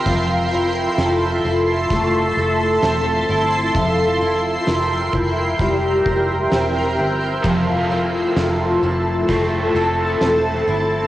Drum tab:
HH |x-x-x-x-|x-x-x-x-|x-x-x-x-|
SD |--o---o-|--o---o-|--o---o-|
BD |o---o---|o--ooo--|o---o---|